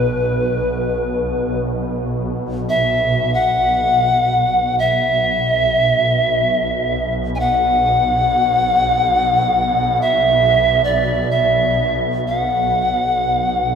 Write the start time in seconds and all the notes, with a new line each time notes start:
Already playing: B1 B2 B4
2.69 E5
3.34 F#5
4.10 B1 B2
4.79 E5
7.35 G#5
7.40 F#5
10.01 E5
10.84 D5
11.31 E5
12.27 F#5